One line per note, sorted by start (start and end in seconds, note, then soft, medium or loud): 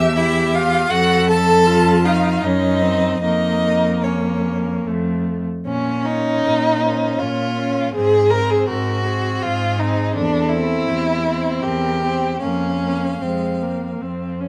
0.00 0.88 E2 medium
0.00 0.15 G4 medium
0.00 0.18 E5 loud
0.00 0.15 E6 loud
0.15 0.56 E4 loud
0.15 0.90 G4 medium
0.15 0.56 E5 loud
0.55 0.92 F4 loud
0.55 0.92 F5 loud
0.91 2.40 F2 medium
0.91 1.28 F#4 loud
0.91 1.67 A4 medium
0.91 1.29 F#5 loud
1.27 2.04 A4 loud
1.27 2.07 A5 loud
1.66 2.06 F4 medium
2.05 2.46 D#4 medium
2.05 2.45 F4 medium
2.05 2.46 F5 loud
2.43 3.21 F#2 medium
2.43 2.83 C#4 medium
2.43 3.22 D#4 loud
2.43 3.21 D#5 loud
2.81 3.22 C4 medium
3.22 4.82 F2 medium
3.22 4.88 A#3 medium
3.22 4.05 D#4 loud
3.22 4.05 D#5 loud
4.03 4.86 C#4 medium
4.03 4.85 C#5 medium
4.86 5.45 F2 medium
4.86 5.46 A3 medium
5.66 6.35 A#2 medium
5.66 6.07 C#4 medium
5.66 6.48 C#5 medium
6.05 6.81 C#4 medium
6.05 7.21 D#4 loud
6.46 7.12 A#2 medium
6.46 6.84 A#4 medium
6.82 7.55 C#4 medium
6.82 7.22 C5 medium
7.19 7.85 A#2 medium
7.19 7.93 F4 medium
7.19 7.93 C#5 medium
7.57 7.93 C#4 medium
7.93 8.60 G#2 medium
7.93 8.31 C4 medium
7.93 8.32 G#4 loud
7.93 8.69 C5 medium
8.30 9.04 C4 medium
8.30 8.52 A#4 loud
8.50 8.68 G#4 medium
8.67 9.34 G#2 medium
8.67 9.44 F#4 loud
8.67 9.07 A#4 medium
9.05 9.77 C4 medium
9.05 10.17 G#4 medium
9.43 10.07 G#2 medium
9.43 9.81 F4 loud
9.78 10.14 C4 medium
9.78 10.15 D#4 loud
10.15 10.79 E2 medium
10.15 10.51 D4 loud
10.15 10.90 A4 medium
10.49 11.23 C4 medium
10.49 11.63 E4 loud
10.88 11.54 E2 medium
10.88 11.26 G4 medium
11.25 12.01 C4 medium
11.25 11.62 C5 medium
11.62 12.33 E2 medium
11.62 12.41 G4 medium
11.62 12.05 A#4 medium
12.03 12.41 C4 medium
12.03 12.41 C5 medium
12.40 13.12 F2 medium
12.40 12.82 A#3 soft
12.40 13.24 C#4 medium
12.40 14.39 F5 medium
12.83 13.13 A#3 soft
13.21 13.91 F2 medium
13.21 13.64 G#3 medium
13.21 14.01 C4 medium
13.62 14.03 A#3 medium
14.00 14.48 F2 medium
14.00 14.42 C4 medium
14.40 14.48 C#4 medium